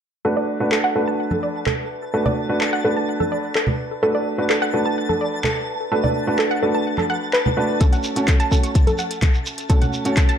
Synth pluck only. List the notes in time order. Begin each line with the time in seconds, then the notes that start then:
0.25 A4
0.37 D5
0.72 A4
0.84 F#5
0.96 A4
1.08 A5
1.31 A4
1.43 D5
1.67 A4
2.14 A4
2.26 D5
2.61 A4
2.73 F#5
2.85 A4
2.97 A5
3.20 A4
3.32 D5
3.55 A4
4.03 A4
4.15 D5
4.50 A4
4.62 F#5
4.74 A4
4.86 A5
5.09 A4
5.21 D5
5.44 A4
5.92 A4
6.04 D5
6.39 A4
6.51 F#5
6.63 A4
6.75 A5
6.98 A4
7.10 F#5
7.33 B4
7.81 A4
7.93 F#5
8.28 A4
8.40 A5
8.52 A4
8.64 C#6
8.87 A4
8.99 F#5
9.22 A4
9.70 A4
9.82 F#5
10.17 A4
10.29 A5